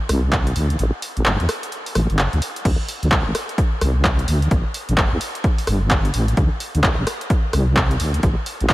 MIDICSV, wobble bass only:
0, 0, Header, 1, 2, 480
1, 0, Start_track
1, 0, Tempo, 465116
1, 815, Time_signature, 4, 2, 24, 8
1, 9017, End_track
2, 0, Start_track
2, 0, Title_t, "Wobble bass"
2, 0, Program_c, 0, 39
2, 97, Note_on_c, 0, 36, 94
2, 548, Note_off_c, 0, 36, 0
2, 577, Note_on_c, 0, 38, 92
2, 782, Note_off_c, 0, 38, 0
2, 818, Note_on_c, 0, 33, 102
2, 937, Note_off_c, 0, 33, 0
2, 1206, Note_on_c, 0, 33, 91
2, 1279, Note_off_c, 0, 33, 0
2, 1298, Note_on_c, 0, 31, 80
2, 1417, Note_off_c, 0, 31, 0
2, 1447, Note_on_c, 0, 40, 90
2, 1520, Note_off_c, 0, 40, 0
2, 2018, Note_on_c, 0, 33, 85
2, 2137, Note_off_c, 0, 33, 0
2, 2165, Note_on_c, 0, 31, 100
2, 2349, Note_off_c, 0, 31, 0
2, 2405, Note_on_c, 0, 38, 93
2, 2479, Note_off_c, 0, 38, 0
2, 2736, Note_on_c, 0, 38, 99
2, 2856, Note_off_c, 0, 38, 0
2, 3124, Note_on_c, 0, 38, 89
2, 3198, Note_off_c, 0, 38, 0
2, 3217, Note_on_c, 0, 36, 82
2, 3336, Note_off_c, 0, 36, 0
2, 3364, Note_on_c, 0, 33, 92
2, 3438, Note_off_c, 0, 33, 0
2, 3935, Note_on_c, 0, 36, 97
2, 4388, Note_off_c, 0, 36, 0
2, 4416, Note_on_c, 0, 38, 91
2, 4621, Note_off_c, 0, 38, 0
2, 4656, Note_on_c, 0, 33, 100
2, 4776, Note_off_c, 0, 33, 0
2, 5044, Note_on_c, 0, 33, 89
2, 5118, Note_off_c, 0, 33, 0
2, 5136, Note_on_c, 0, 31, 82
2, 5256, Note_off_c, 0, 31, 0
2, 5283, Note_on_c, 0, 40, 94
2, 5358, Note_off_c, 0, 40, 0
2, 5857, Note_on_c, 0, 31, 101
2, 6308, Note_off_c, 0, 31, 0
2, 6336, Note_on_c, 0, 33, 90
2, 6542, Note_off_c, 0, 33, 0
2, 6576, Note_on_c, 0, 38, 102
2, 6696, Note_off_c, 0, 38, 0
2, 6963, Note_on_c, 0, 38, 94
2, 7038, Note_off_c, 0, 38, 0
2, 7056, Note_on_c, 0, 36, 77
2, 7176, Note_off_c, 0, 36, 0
2, 7204, Note_on_c, 0, 33, 96
2, 7278, Note_off_c, 0, 33, 0
2, 7776, Note_on_c, 0, 36, 95
2, 8228, Note_off_c, 0, 36, 0
2, 8256, Note_on_c, 0, 38, 90
2, 8461, Note_off_c, 0, 38, 0
2, 8495, Note_on_c, 0, 33, 100
2, 8616, Note_off_c, 0, 33, 0
2, 8885, Note_on_c, 0, 33, 91
2, 8959, Note_off_c, 0, 33, 0
2, 8975, Note_on_c, 0, 31, 80
2, 9017, Note_off_c, 0, 31, 0
2, 9017, End_track
0, 0, End_of_file